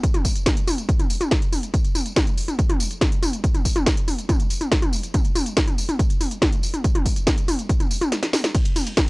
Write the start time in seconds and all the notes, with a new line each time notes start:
0.03 kick, closed hi-hat, tambourine
0.14 closed hi-hat, mid tom, tambourine
0.25 kick, open hi-hat, tambourine
0.36 closed hi-hat, tambourine
0.46 kick, snare, closed hi-hat, mid tom, tambourine
0.57 closed hi-hat, tambourine
0.67 open hi-hat, mid tom, tambourine
0.78 closed hi-hat, tambourine
0.89 kick, closed hi-hat, tambourine
0.99 closed hi-hat, mid tom, tambourine
1.10 open hi-hat, tambourine
1.21 closed hi-hat, mid tom, tambourine
1.31 kick, snare, closed hi-hat, tambourine
1.42 closed hi-hat, tambourine
1.52 open hi-hat, mid tom, tambourine
1.63 closed hi-hat, tambourine
1.74 kick, closed hi-hat, tambourine
1.84 closed hi-hat, tambourine
1.95 open hi-hat, mid tom, tambourine
2.06 closed hi-hat, tambourine
2.16 kick, snare, closed hi-hat, mid tom, tambourine
2.27 closed hi-hat, tambourine
2.38 open hi-hat, tambourine
2.48 closed hi-hat, mid tom, tambourine
2.59 kick, closed hi-hat, tambourine
2.70 closed hi-hat, mid tom, tambourine
2.80 open hi-hat, tambourine
2.91 closed hi-hat, tambourine
3.01 kick, snare, closed hi-hat, mid tom, tambourine
3.12 closed hi-hat, tambourine
3.23 open hi-hat, mid tom, tambourine
3.33 closed hi-hat, tambourine
3.44 kick, closed hi-hat, tambourine
3.55 closed hi-hat, mid tom, tambourine
3.65 kick, open hi-hat, tambourine
3.76 closed hi-hat, mid tom, tambourine
3.86 kick, snare, closed hi-hat, tambourine
3.97 closed hi-hat, tambourine
4.08 open hi-hat, mid tom, tambourine
4.18 closed hi-hat, tambourine
4.29 kick, closed hi-hat, mid tom, tambourine
4.40 closed hi-hat, tambourine
4.50 open hi-hat, tambourine
4.61 closed hi-hat, mid tom, tambourine
4.72 kick, snare, closed hi-hat, tambourine
4.82 closed hi-hat, mid tom, tambourine
4.93 open hi-hat, tambourine
5.03 closed hi-hat, tambourine
5.14 kick, closed hi-hat, mid tom, tambourine
5.25 closed hi-hat, tambourine
5.35 open hi-hat, mid tom, tambourine
5.46 closed hi-hat, tambourine
5.57 kick, snare, closed hi-hat, tambourine
5.67 closed hi-hat, mid tom, tambourine
5.78 open hi-hat, tambourine
5.89 closed hi-hat, mid tom, tambourine
5.99 kick, closed hi-hat, tambourine
6.10 closed hi-hat, tambourine
6.21 open hi-hat, mid tom, tambourine
6.31 closed hi-hat, tambourine
6.42 kick, snare, closed hi-hat, mid tom, tambourine
6.52 closed hi-hat, tambourine
6.63 open hi-hat, tambourine
6.74 closed hi-hat, mid tom, tambourine
6.84 kick, closed hi-hat, tambourine
6.95 closed hi-hat, mid tom, tambourine
7.06 kick, open hi-hat, tambourine
7.16 closed hi-hat, tambourine
7.27 kick, snare, closed hi-hat, mid tom, tambourine
7.38 closed hi-hat, tambourine
7.48 open hi-hat, mid tom, tambourine
7.59 closed hi-hat, tambourine
7.69 kick, closed hi-hat, tambourine
7.80 closed hi-hat, mid tom, tambourine
7.91 open hi-hat, tambourine
8.01 closed hi-hat, mid tom, tambourine
8.12 snare, closed hi-hat, tambourine
8.23 snare, closed hi-hat, tambourine
8.33 snare, open hi-hat, mid tom, tambourine
8.44 snare, closed hi-hat, tambourine
8.55 kick, closed hi-hat, ride, tambourine
8.65 closed hi-hat, ride, tambourine
8.76 open hi-hat, mid tom, ride, tambourine
8.87 closed hi-hat, ride, tambourine
8.97 kick, snare, closed hi-hat, mid tom, ride, tambourine